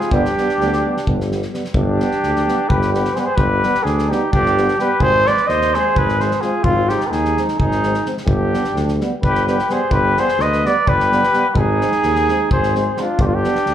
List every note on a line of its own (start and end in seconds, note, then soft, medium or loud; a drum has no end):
0.00 0.17 F4 medium
0.00 0.14 G#4 medium
0.00 snare soft
0.11 0.25 G1 medium
0.11 0.22 G3 medium
0.11 0.22 B3 medium
0.11 1.32 G4 loud
0.11 kick medium
0.16 1.33 D4 medium
0.25 snare soft
0.37 0.45 G3 medium
0.37 0.46 B3 medium
0.37 snare soft
0.49 snare soft
0.59 0.85 D2 medium
0.59 0.70 G3 medium
0.59 0.70 B3 medium
0.59 snare soft
0.73 snare soft
0.84 0.93 G3 soft
0.84 0.94 B3 medium
0.97 snare soft
1.06 1.43 G1 medium
1.06 1.16 G3 medium
1.06 1.18 B3 soft
1.06 kick medium
1.21 snare soft
1.31 1.40 G3 soft
1.31 1.40 B3 soft
1.31 snare soft
1.42 snare soft
1.53 1.61 G3 medium
1.53 1.62 B3 medium
1.53 snare soft
1.65 snare soft
1.74 2.00 G1 loud
1.74 2.70 D4 medium
1.74 2.71 G4 medium
1.74 kick medium
1.99 2.09 G3 medium
1.99 2.08 B3 medium
1.99 snare soft
2.11 snare soft
2.22 2.48 D2 medium
2.22 snare soft
2.36 snare soft
2.47 2.57 G3 medium
2.47 2.56 B3 medium
2.47 snare soft
2.68 3.07 G1 medium
2.68 2.92 G4 medium
2.68 2.93 B4 medium
2.68 kick medium
2.82 snare soft
2.93 3.02 G3 medium
2.93 3.03 B3 medium
2.93 3.17 G4 medium
2.93 3.15 B4 medium
2.93 snare soft
3.05 snare soft
3.14 3.24 G3 medium
3.14 3.24 B3 medium
3.14 3.22 G#4 medium
3.14 3.21 C5 medium
3.14 snare soft
3.19 3.27 G4 soft
3.19 3.26 B4 medium
3.25 3.37 G#4 medium
3.25 3.38 C5 medium
3.36 3.63 G1 medium
3.36 3.85 G4 medium
3.36 3.85 B4 loud
3.36 kick medium
3.63 3.72 G3 medium
3.63 3.72 B3 medium
3.63 snare soft
3.75 snare soft
3.83 4.11 D2 medium
3.83 4.10 D4 medium
3.83 4.12 G#4 medium
3.83 snare soft
3.99 snare soft
4.08 4.19 G3 medium
4.08 4.20 B3 medium
4.08 4.30 D#4 medium
4.08 4.33 G4 medium
4.08 snare soft
4.31 4.70 G1 medium
4.31 4.75 D4 medium
4.31 4.76 G4 loud
4.31 kick medium
4.46 snare soft
4.57 4.66 G3 medium
4.57 4.66 B3 medium
4.57 snare soft
4.68 snare soft
4.77 4.88 G3 medium
4.77 4.88 B3 medium
4.77 5.01 G4 medium
4.77 5.03 B4 loud
4.77 snare soft
4.99 5.26 G#1 medium
4.99 5.27 G#4 medium
4.99 5.29 C5 loud
4.99 kick medium
5.26 5.35 G#3 medium
5.26 5.36 C4 medium
5.26 5.49 B4 medium
5.26 5.48 D5 loud
5.26 snare soft
5.37 snare soft
5.47 5.75 D#2 medium
5.47 5.76 C5 medium
5.47 5.76 D#5 medium
5.47 snare soft
5.62 snare soft
5.74 5.84 G#3 medium
5.74 5.83 C4 medium
5.74 5.98 G#4 medium
5.74 5.99 C5 loud
5.74 snare soft
5.95 6.33 G#1 medium
5.95 6.19 G#4 medium
5.95 6.22 B4 loud
5.95 kick medium
6.09 snare soft
6.19 6.30 G#3 medium
6.19 6.30 C4 medium
6.19 6.43 G#4 medium
6.19 6.42 C5 medium
6.19 snare soft
6.31 snare soft
6.41 6.51 G#3 medium
6.41 6.52 C4 medium
6.41 6.65 F4 medium
6.41 6.66 G#4 medium
6.41 snare soft
6.63 6.91 G#1 medium
6.63 6.91 C4 medium
6.63 6.91 F4 loud
6.63 kick medium
6.89 6.98 G#3 medium
6.89 6.99 C4 soft
6.89 7.07 D#4 medium
6.89 7.08 G4 medium
6.89 snare soft
7.00 snare soft
7.06 7.12 G4 soft
7.06 7.12 B4 medium
7.10 7.38 D#2 medium
7.10 7.59 D#4 medium
7.10 7.43 G#4 medium
7.10 snare soft
7.25 snare soft
7.37 7.46 G#3 soft
7.37 7.47 C4 soft
7.37 snare soft
7.48 snare soft
7.57 7.97 G#1 medium
7.57 8.08 D#4 medium
7.57 8.06 G#4 medium
7.57 kick medium
7.72 snare soft
7.83 7.92 G#3 soft
7.83 7.93 C4 medium
7.83 snare soft
7.94 snare soft
8.05 8.14 G#3 soft
8.05 8.15 C4 medium
8.05 snare soft
8.18 snare soft
8.26 8.53 G1 loud
8.26 8.94 D4 medium
8.26 8.93 G4 medium
8.26 kick medium
8.52 8.62 G3 soft
8.52 8.62 B3 soft
8.52 snare soft
8.64 snare soft
8.74 9.01 D2 medium
8.74 snare soft
8.88 snare soft
9.00 9.10 G3 medium
9.00 9.11 B3 medium
9.00 snare soft
9.22 9.60 G1 medium
9.22 9.45 G4 medium
9.22 9.45 B4 medium
9.22 kick medium
9.35 snare soft
9.46 9.56 G3 medium
9.46 9.57 B3 medium
9.46 9.72 G4 medium
9.46 9.73 B4 medium
9.46 snare soft
9.59 snare soft
9.69 9.78 G3 medium
9.69 9.78 B3 medium
9.69 9.92 G#4 medium
9.69 9.94 C5 medium
9.69 snare soft
9.89 10.16 G1 medium
9.89 10.20 G4 medium
9.89 10.21 B4 loud
9.89 kick medium
10.16 10.26 G3 medium
10.16 10.25 B3 medium
10.16 10.42 G#4 medium
10.16 10.43 C5 loud
10.16 snare soft
10.28 snare soft
10.38 10.65 D2 medium
10.38 10.65 B4 medium
10.38 snare soft
10.42 10.68 D#5 loud
10.53 snare soft
10.63 10.74 G3 medium
10.63 10.73 B3 medium
10.63 10.88 B4 medium
10.63 10.90 D5 medium
10.63 snare soft
10.86 11.24 G1 medium
10.86 11.49 G4 medium
10.86 11.50 B4 loud
10.86 kick medium
11.00 snare soft
11.11 11.20 G3 medium
11.11 11.20 B3 medium
11.11 snare soft
11.23 snare soft
11.33 11.42 G3 medium
11.33 11.42 B3 medium
11.33 snare soft
11.49 11.56 G4 medium
11.49 11.59 B4 medium
11.54 11.81 G#1 loud
11.54 12.51 D#4 medium
11.54 12.52 G#4 loud
11.54 kick medium
11.81 11.90 G#3 medium
11.81 11.90 C4 medium
11.81 snare soft
11.92 snare soft
12.03 12.30 D#2 medium
12.03 snare soft
12.16 snare soft
12.29 12.38 G#3 medium
12.29 12.39 C4 medium
12.29 snare soft
12.51 12.88 G#1 medium
12.51 12.74 G#4 medium
12.51 12.74 C5 medium
12.51 kick loud
12.63 snare soft
12.75 12.84 G#3 medium
12.75 12.84 C4 medium
12.75 13.00 G#4 medium
12.75 13.02 C5 medium
12.75 snare soft
12.97 13.06 G#3 medium
12.97 13.07 C4 medium
12.97 13.20 D4 medium
12.97 13.23 F4 medium
12.97 snare soft
13.19 13.45 G1 medium
13.19 13.26 D4 medium
13.19 13.28 G4 medium
13.19 kick loud
13.26 13.36 D4 medium
13.26 13.36 F4 medium
13.35 13.74 D4 medium
13.35 13.74 G4 medium
13.44 13.54 G3 medium
13.44 13.54 B3 medium
13.44 snare soft
13.55 snare soft
13.66 13.74 D2 medium
13.66 snare soft